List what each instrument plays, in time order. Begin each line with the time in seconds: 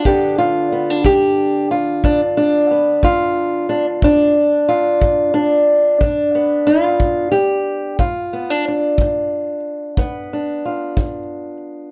0.05 steel-string acoustic guitar G2 D3 B3 D4 G4, kick
0.38 steel-string acoustic guitar F4
0.72 steel-string acoustic guitar B3
0.90 steel-string acoustic guitar D4
1.04 steel-string acoustic guitar G2 G4, kick
1.71 steel-string acoustic guitar F4
2.04 steel-string acoustic guitar G2 D4, kick
2.37 steel-string acoustic guitar D4
2.71 steel-string acoustic guitar B3
3.03 steel-string acoustic guitar G2 F4, kick
3.69 steel-string acoustic guitar D4
4.02 steel-string acoustic guitar G2 D4, kick
4.69 steel-string acoustic guitar F4
5.02 steel-string acoustic guitar G2, kick
5.34 steel-string acoustic guitar D4
6.01 steel-string acoustic guitar G2 D4, kick
6.35 steel-string acoustic guitar B3
6.67 steel-string acoustic guitar F4
7.00 steel-string acoustic guitar G2, kick
7.32 steel-string acoustic guitar G4
7.99 steel-string acoustic guitar G2 F4, kick
8.33 steel-string acoustic guitar B3
8.50 steel-string acoustic guitar D4
8.68 steel-string acoustic guitar D4
8.98 steel-string acoustic guitar G2, kick
9.97 steel-string acoustic guitar G2 B3, kick
10.33 steel-string acoustic guitar D4
10.65 steel-string acoustic guitar F4
10.97 steel-string acoustic guitar G2, kick